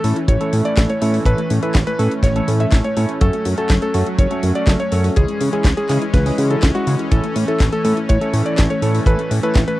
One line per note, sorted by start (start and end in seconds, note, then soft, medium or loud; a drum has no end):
0.00 3.17 E3 medium
0.00 5.12 A3 medium
0.00 9.80 C#4 medium
0.00 0.08 C#4 medium
0.00 0.15 A4 loud
0.04 0.13 A2 medium
0.04 0.17 A3 loud
0.04 0.17 C#4 medium
0.04 0.17 E4 medium
0.04 0.17 A4 loud
0.04 open hi-hat loud
0.16 0.21 E4 medium
0.16 closed hi-hat soft
0.28 0.37 A1 loud
0.28 0.33 E3 loud
0.28 0.52 C#5 medium
0.28 kick loud
0.28 closed hi-hat medium
0.41 0.52 A3 medium
0.41 0.74 A3 loud
0.41 0.74 C#4 medium
0.41 0.74 E4 medium
0.41 0.74 A4 loud
0.41 closed hi-hat soft
0.53 0.62 A2 medium
0.53 0.60 C#4 medium
0.53 open hi-hat loud
0.65 0.69 E4 medium
0.65 0.81 D5 medium
0.65 closed hi-hat soft
0.77 0.86 A1 loud
0.77 0.88 E3 medium
0.77 0.91 A3 medium
0.77 0.91 C#4 medium
0.77 0.90 E4 medium
0.77 0.91 A4 medium
0.77 kick loud
0.77 snare loud
0.77 clap loud
0.77 closed hi-hat medium
0.89 0.97 A3 medium
0.89 1.13 C#5 medium
0.89 closed hi-hat soft
1.02 1.20 A2 medium
1.02 1.23 A3 loud
1.02 1.06 C#4 medium
1.02 1.23 C#4 medium
1.02 1.23 E4 medium
1.02 1.23 A4 loud
1.02 open hi-hat loud
1.14 1.18 E4 medium
1.14 open hi-hat medium
1.25 1.35 A1 loud
1.25 1.30 E3 loud
1.25 1.39 A3 medium
1.25 1.39 C#4 medium
1.25 1.39 E4 medium
1.25 1.39 A4 loud
1.25 1.49 B4 loud
1.25 kick loud
1.25 closed hi-hat medium
1.38 1.49 A3 medium
1.38 closed hi-hat soft
1.50 1.59 A2 medium
1.50 1.58 C#4 medium
1.50 open hi-hat loud
1.63 1.76 A3 medium
1.63 1.76 C#4 medium
1.63 1.67 E4 medium
1.63 1.76 E4 medium
1.63 1.76 A4 loud
1.63 1.78 B4 medium
1.63 closed hi-hat soft
1.75 1.84 A1 loud
1.75 1.86 E3 medium
1.75 kick loud
1.75 snare loud
1.75 clap medium
1.75 closed hi-hat medium
1.87 1.94 A3 medium
1.87 2.10 B4 loud
1.87 closed hi-hat soft
1.99 2.08 A2 medium
1.99 2.12 A3 loud
1.99 2.04 C#4 medium
1.99 2.12 C#4 medium
1.99 2.12 E4 medium
1.99 2.12 A4 loud
1.99 open hi-hat loud
2.11 2.16 E4 medium
2.11 closed hi-hat soft
2.23 2.41 A1 medium
2.23 2.28 E3 loud
2.23 2.47 C#5 medium
2.23 kick loud
2.23 snare soft
2.23 closed hi-hat medium
2.36 2.47 A3 medium
2.36 2.70 A3 loud
2.36 2.70 C#4 medium
2.36 2.70 E4 medium
2.36 2.70 A4 loud
2.36 closed hi-hat soft
2.48 2.66 A2 medium
2.48 2.55 C#4 medium
2.48 open hi-hat loud
2.60 2.65 E4 medium
2.60 2.76 E5 medium
2.60 closed hi-hat soft
2.72 2.81 A1 medium
2.72 2.83 E3 medium
2.72 2.86 A3 medium
2.72 2.86 C#4 medium
2.72 2.86 E4 medium
2.72 2.86 A4 medium
2.72 kick loud
2.72 snare loud
2.72 clap loud
2.72 closed hi-hat medium
2.84 2.92 A3 medium
2.84 3.08 C#5 medium
2.84 closed hi-hat soft
2.97 3.06 A2 loud
2.97 3.18 A3 medium
2.97 3.01 C#4 medium
2.97 3.18 C#4 medium
2.97 3.18 E4 medium
2.97 3.18 A4 loud
2.97 open hi-hat loud
3.09 3.13 E4 medium
3.09 closed hi-hat soft
3.21 3.30 F#1 loud
3.21 3.26 F#3 loud
3.21 5.14 F#3 medium
3.21 3.34 A3 medium
3.21 3.34 C#4 medium
3.21 3.34 F#4 medium
3.21 3.45 A4 loud
3.21 3.34 A4 loud
3.21 kick loud
3.21 closed hi-hat medium
3.33 3.44 A3 medium
3.33 closed hi-hat soft
3.45 3.55 F#2 medium
3.45 3.53 C#4 medium
3.45 open hi-hat loud
3.58 3.71 A3 medium
3.58 3.71 C#4 medium
3.58 3.71 F#4 medium
3.58 3.62 F#4 medium
3.58 3.71 A4 loud
3.58 3.73 A4 medium
3.58 closed hi-hat soft
3.70 3.79 F#1 loud
3.70 3.81 F#3 medium
3.70 kick loud
3.70 snare loud
3.70 clap medium
3.70 closed hi-hat medium
3.82 3.90 A3 medium
3.82 4.06 A4 loud
3.82 closed hi-hat soft
3.94 4.03 F#2 medium
3.94 4.08 A3 loud
3.94 4.08 C#4 medium
3.94 3.99 C#4 medium
3.94 4.08 F#4 loud
3.94 4.08 A4 loud
3.94 open hi-hat loud
4.06 4.11 F#4 medium
4.06 closed hi-hat soft
4.19 4.28 F#1 loud
4.19 4.23 F#3 loud
4.19 4.42 C#5 medium
4.19 kick loud
4.19 closed hi-hat medium
4.31 4.42 A3 medium
4.31 4.65 A3 loud
4.31 4.65 C#4 medium
4.31 4.65 F#4 medium
4.31 4.65 A4 loud
4.31 closed hi-hat soft
4.43 4.52 F#2 medium
4.43 4.51 C#4 medium
4.43 open hi-hat loud
4.55 4.60 F#4 medium
4.55 4.71 D5 medium
4.55 closed hi-hat soft
4.67 4.76 F#1 loud
4.67 4.79 F#3 medium
4.67 4.81 A3 medium
4.67 4.81 C#4 medium
4.67 4.81 F#4 medium
4.67 4.81 A4 medium
4.67 kick loud
4.67 snare loud
4.67 clap medium
4.67 closed hi-hat medium
4.80 4.87 A3 medium
4.80 5.03 C#5 medium
4.80 closed hi-hat soft
4.92 5.10 F#2 medium
4.92 5.13 A3 loud
4.92 4.96 C#4 medium
4.92 5.13 C#4 medium
4.92 5.13 F#4 medium
4.92 5.14 A4 loud
4.92 open hi-hat loud
5.04 5.09 F#4 medium
5.04 open hi-hat medium
5.16 5.26 C#2 loud
5.16 9.80 E3 medium
5.16 5.21 E3 loud
5.16 7.09 G#3 medium
5.16 5.30 G#3 medium
5.16 5.30 C#4 medium
5.16 5.30 E4 medium
5.16 5.40 G#4 loud
5.16 5.30 G#4 medium
5.16 kick loud
5.16 closed hi-hat medium
5.28 5.40 G#3 medium
5.28 closed hi-hat soft
5.41 5.50 C#3 medium
5.41 5.48 C#4 medium
5.41 open hi-hat loud
5.53 5.66 G#3 medium
5.53 5.66 C#4 medium
5.53 5.57 E4 medium
5.53 5.66 E4 medium
5.53 5.68 G#4 medium
5.53 5.66 G#4 loud
5.53 closed hi-hat soft
5.64 5.74 C#2 loud
5.64 5.76 E3 medium
5.64 kick loud
5.64 snare loud
5.64 clap medium
5.64 closed hi-hat medium
5.77 5.85 G#3 medium
5.77 6.01 G#4 loud
5.77 closed hi-hat soft
5.89 5.98 C#3 medium
5.89 6.03 G#3 loud
5.89 6.03 C#4 medium
5.89 5.94 C#4 medium
5.89 6.03 E4 medium
5.89 6.03 G#4 loud
5.89 clap medium
5.89 open hi-hat loud
6.02 6.06 E4 medium
6.02 closed hi-hat soft
6.14 6.32 C#2 medium
6.14 6.18 E3 loud
6.14 6.37 B4 medium
6.14 kick loud
6.14 snare soft
6.14 closed hi-hat medium
6.26 6.37 G#3 medium
6.26 6.36 G#3 medium
6.26 6.36 C#4 medium
6.26 6.36 E4 medium
6.26 6.36 G#4 loud
6.26 open hi-hat medium
6.38 6.56 C#3 medium
6.38 6.72 G#3 medium
6.38 6.46 C#4 medium
6.38 6.72 C#4 medium
6.38 6.72 E4 medium
6.38 6.72 F#4 medium
6.38 open hi-hat loud
6.50 6.55 E4 medium
6.50 6.66 A4 medium
6.50 closed hi-hat soft
6.63 6.72 C#2 medium
6.63 6.74 E3 medium
6.63 kick loud
6.63 snare loud
6.63 clap medium
6.63 closed hi-hat medium
6.75 6.82 G#3 medium
6.75 7.09 G#3 medium
6.75 7.09 C#4 medium
6.75 7.09 E4 medium
6.75 6.98 F#4 medium
6.75 7.09 F#4 medium
6.75 closed hi-hat soft
6.87 6.96 C#3 loud
6.87 6.91 C#4 medium
6.87 open hi-hat loud
6.99 7.04 E4 medium
6.99 closed hi-hat soft
7.11 7.20 A1 loud
7.11 7.16 E3 loud
7.11 7.25 A3 medium
7.11 9.80 A3 medium
7.11 7.25 C#4 medium
7.11 7.25 E4 medium
7.11 7.35 A4 medium
7.11 7.25 A4 medium
7.11 kick loud
7.11 closed hi-hat medium
7.24 7.35 A3 medium
7.24 closed hi-hat soft
7.36 7.45 A2 medium
7.36 7.43 C#4 medium
7.36 open hi-hat loud
7.48 7.61 A3 medium
7.48 7.61 C#4 medium
7.48 7.61 E4 medium
7.48 7.53 E4 medium
7.48 7.64 A4 medium
7.48 7.61 A4 loud
7.48 closed hi-hat soft
7.60 7.69 A1 loud
7.60 7.71 E3 medium
7.60 kick loud
7.60 snare loud
7.60 clap medium
7.60 closed hi-hat medium
7.72 7.80 A3 medium
7.72 7.96 A4 medium
7.72 closed hi-hat soft
7.85 7.94 A2 medium
7.85 7.98 A3 loud
7.85 7.98 C#4 medium
7.85 7.89 C#4 medium
7.85 7.98 E4 medium
7.85 7.98 A4 loud
7.85 open hi-hat loud
7.97 8.01 E4 medium
7.97 closed hi-hat soft
8.09 8.18 A1 loud
8.09 8.13 E3 loud
8.09 8.32 C#5 loud
8.09 kick loud
8.09 closed hi-hat medium
8.21 8.32 A3 medium
8.21 8.55 A3 loud
8.21 8.55 C#4 medium
8.21 8.55 E4 medium
8.21 8.55 A4 loud
8.21 closed hi-hat soft
8.33 8.42 A2 medium
8.33 8.41 C#4 medium
8.33 open hi-hat loud
8.46 8.50 E4 medium
8.46 8.61 D5 medium
8.46 closed hi-hat soft
8.58 8.67 A1 loud
8.58 8.69 E3 medium
8.58 8.71 A3 medium
8.58 8.71 C#4 medium
8.58 8.71 E4 medium
8.58 8.71 A4 medium
8.58 kick loud
8.58 snare loud
8.58 clap medium
8.58 closed hi-hat medium
8.70 8.77 A3 medium
8.70 8.93 C#5 medium
8.70 closed hi-hat soft
8.82 9.00 A2 medium
8.82 9.04 A3 medium
8.82 9.04 C#4 medium
8.82 8.87 C#4 medium
8.82 9.04 E4 medium
8.82 9.04 A4 loud
8.82 open hi-hat loud
8.94 8.99 E4 medium
8.94 open hi-hat medium
9.06 9.15 A1 loud
9.06 9.11 E3 loud
9.06 9.20 A3 medium
9.06 9.20 C#4 medium
9.06 9.20 E4 medium
9.06 9.20 A4 loud
9.06 9.30 B4 loud
9.06 kick loud
9.06 closed hi-hat medium
9.19 9.30 A3 medium
9.19 closed hi-hat soft
9.31 9.40 A2 medium
9.31 9.38 C#4 medium
9.31 open hi-hat loud
9.43 9.56 A3 medium
9.43 9.56 C#4 medium
9.43 9.56 E4 medium
9.43 9.48 E4 medium
9.43 9.56 A4 loud
9.43 9.59 B4 medium
9.43 closed hi-hat soft
9.55 9.64 A1 loud
9.55 9.66 E3 medium
9.55 kick loud
9.55 snare loud
9.55 clap medium
9.55 closed hi-hat medium
9.68 9.75 A3 medium
9.68 9.80 B4 loud
9.68 closed hi-hat soft